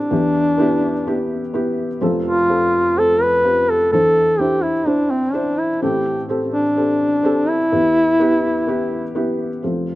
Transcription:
Already playing: felt piano A1 A2 C4 G4 A4, duduk D4
0.11 felt piano E2 E3 B3 E4 G4
0.58 felt piano B3 E4 G4
1.07 felt piano B3 E4 G4
1.53 felt piano B3 E4 G4
2.01 felt piano F1 F2 C4 F4 A4
2.28 duduk F4
2.48 felt piano C4 F4 A4
2.96 felt piano C4 F4 A4, duduk A4
3.22 duduk B4
3.44 felt piano C4 F4 G4
3.70 duduk A4
3.92 felt piano E2 E3 D4 E4 C5, duduk A4
4.39 felt piano D4 E4 C5, duduk G4
4.63 duduk E4
4.86 felt piano D4 E4 C5, duduk D4
5.11 duduk C4
5.33 felt piano D4 E4 C5, duduk D4
5.58 duduk E4
5.82 felt piano A1 A2 C4 G4 A4, duduk G4
6.29 felt piano C4 G4 A4
6.54 duduk D4
6.76 felt piano C4 G4 A4
7.23 felt piano C4 G4 A4
7.48 duduk E4
7.72 felt piano E2 E3 B3 E4 G4
8.19 felt piano B3 E4 G4
8.67 felt piano B3 E4 G4
9.15 felt piano B3 E4 G4
9.63 felt piano F1 F2 C4 F4 A4

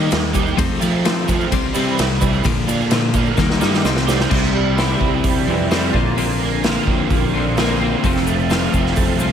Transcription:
Already playing: overdriven electric guitar D#3 A#3 D#4 G4, clean electric guitar A#3
0.10 fingered electric bass D#2, clean electric guitar D#3 G3, snare, ride, shaker
0.33 overdriven electric guitar D#3 A#3 D#4 G4, clean electric guitar D#3 G3, kick, ride, shaker
0.47 shaker
0.57 fingered electric bass F2, clean electric guitar F3 A3 C4, kick, ride, shaker
0.80 overdriven electric guitar F3 A3 C4 F4, clean electric guitar F3 A3, fingered electric bass F3, ride, shaker
1.05 clean electric guitar F3 A3 C4, snare, ride, shaker
1.27 clean electric guitar F3 A3, overdriven electric guitar F3 A3 C4 F4, kick, ride, shaker
1.41 shaker
1.52 fingered electric bass C2, clean electric guitar C3 G3 C4, kick, ride, shaker
1.74 fingered electric bass C3, clean electric guitar C3 G3 C4, overdriven electric guitar E3 G3 C4 E4, ride, shaker
1.98 fingered electric bass C2, clean electric guitar C3 G3, snare, ride, shaker
2.20 clean electric guitar C3 G3, overdriven electric guitar E3 G3 C4 E4, kick, ride, shaker
2.34 shaker
2.44 fingered electric bass A#1, clean electric guitar A#2 D3 F3, kick, ride, shaker
2.67 fingered electric bass A#2, clean electric guitar D3, overdriven electric guitar D3 A#3 D4 F4, ride, shaker
2.80 shaker
2.91 clean electric guitar A#2 D3 F3, snare, ride, shaker
3.14 clean electric guitar A#2 D3, overdriven electric guitar D3 A#3 D4 F4, kick, ride, shaker
3.26 shaker
3.37 fingered electric bass D#2, clean electric guitar D#3 G3 A#3, kick, snare, shaker
3.50 snare
3.60 fingered electric bass G2, clean electric guitar D#3 G3 A#3, overdriven electric guitar D#3 A#3 D#4 G4, snare, shaker
3.73 snare, shaker
3.84 fingered electric bass C2, clean electric guitar C3 G3 C4, snare, shaker
3.97 snare
4.06 clean electric guitar C3 G3, overdriven electric guitar F3 G3 C4 G4, snare, shaker
4.20 snare, shaker
4.30 fingered electric bass C2, overdriven electric guitar C3, clean electric guitar C3 G3 C4 E4, kick, crash
4.44 snare
4.53 overdriven electric guitar G3
4.76 clean electric guitar C3 G3 C4, overdriven electric guitar E4, snare, open hi-hat
4.80 clean electric guitar E4
4.99 fingered electric bass C2, overdriven electric guitar C4, kick
5.23 fingered electric bass C2, overdriven electric guitar G3, kick, open hi-hat
5.46 fingered electric bass F2, overdriven electric guitar E3, clean electric guitar G3 C4 E4
5.69 clean electric guitar C3 G3 C4 E4, overdriven electric guitar G3, snare, open hi-hat
5.93 fingered electric bass A#1, overdriven electric guitar A#2, clean electric guitar A#2 D3 A#3 C4 F4, kick
6.16 clean electric guitar A#2 D3 A#3 C4 F4, overdriven electric guitar A#2, open hi-hat
6.39 overdriven electric guitar A#3
6.63 clean electric guitar A#2 D3 A#3 C4 F4, overdriven electric guitar F4, snare, open hi-hat
6.87 fingered electric bass A#1, overdriven electric guitar C4, kick
7.10 fingered electric bass A#1, overdriven electric guitar A#3, kick, open hi-hat
7.34 overdriven electric guitar D3, clean electric guitar A#3 C4 F4
7.56 clean electric guitar D3 A#3 C4 F4, overdriven electric guitar A#3, snare, open hi-hat
7.80 clean electric guitar A#3 C4 F4, overdriven electric guitar C4
8.03 fingered electric bass F1, overdriven electric guitar F2, clean electric guitar F3 A3 C4 F4, kick, open hi-hat, shaker
8.16 snare
8.26 overdriven electric guitar A3, shaker
8.39 shaker
8.50 clean electric guitar F3 A3 C4 F4, overdriven electric guitar F4, snare, open hi-hat, shaker
8.73 fingered electric bass F1, overdriven electric guitar C4, kick, shaker
8.86 snare
8.96 fingered electric bass F1, overdriven electric guitar A3, kick, open hi-hat, shaker
9.19 fingered electric bass C2, overdriven electric guitar F3, clean electric guitar A3 C4 F4, shaker

